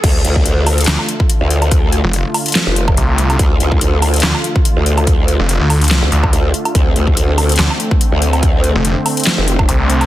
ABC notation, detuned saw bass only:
X:1
M:4/4
L:1/16
Q:"Swing 16ths" 1/4=143
K:Dm
V:1 name="Detuned saw bass" clef=bass
z8 D,, z6 z | z3 F,,,2 z6 z C,,4 | z8 D,, z6 z | z3 F,,,2 D,,4 z D,,2 z4 |
z8 D,, z6 z | z3 F,,,2 z6 z C,,4 |]